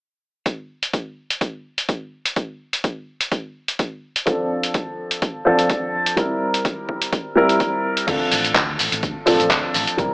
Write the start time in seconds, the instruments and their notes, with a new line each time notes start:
0.46 kick, closed hi-hat
0.83 closed hi-hat
0.93 kick, closed hi-hat
1.30 closed hi-hat
1.41 kick, closed hi-hat
1.78 closed hi-hat
1.89 kick, closed hi-hat
2.25 closed hi-hat
2.36 kick, closed hi-hat
2.73 closed hi-hat
2.84 kick, closed hi-hat
3.21 closed hi-hat
3.32 kick, closed hi-hat
3.68 closed hi-hat
3.79 kick, closed hi-hat
4.16 closed hi-hat
4.26 grand piano F3 C4 D4 A4, kick, closed hi-hat
4.63 closed hi-hat
4.74 kick, closed hi-hat
5.11 closed hi-hat
5.22 kick, closed hi-hat
5.45 grand piano F3 C4 D4 A4
5.59 closed hi-hat
5.70 kick, closed hi-hat
6.06 closed hi-hat
6.16 grand piano G3 C4 E4 A#4, kick, closed hi-hat
6.54 closed hi-hat
6.65 kick, closed hi-hat
6.89 kick
7.02 closed hi-hat
7.13 kick, closed hi-hat
7.35 grand piano G3 C4 E4 A#4
7.49 closed hi-hat
7.60 kick, closed hi-hat
7.97 closed hi-hat
8.07 fingered electric bass D2, grand piano F3 C4 D4 A4, kick, closed hi-hat, crash, shaker
8.21 muted fingered electric bass stroke
8.31 fingered electric bass A1, open hi-hat, shaker
8.45 closed hi-hat, shaker
8.55 fingered electric bass D2, kick, clap, closed hi-hat, shaker
8.79 fingered electric bass A1, open hi-hat, shaker
8.92 fingered electric bass A1, closed hi-hat, shaker
9.03 fingered electric bass D2, kick, closed hi-hat, shaker
9.16 muted fingered electric bass stroke
9.26 fingered electric bass A1, grand piano F3 C4 D4 A4, open hi-hat, shaker
9.40 fingered electric bass A1, closed hi-hat, shaker
9.51 fingered electric bass D2, kick, clap, closed hi-hat, shaker
9.74 fingered electric bass A1, open hi-hat, shaker
9.87 closed hi-hat, shaker
9.97 fingered electric bass C2, grand piano G3 C4 E4 A#4, kick, closed hi-hat, shaker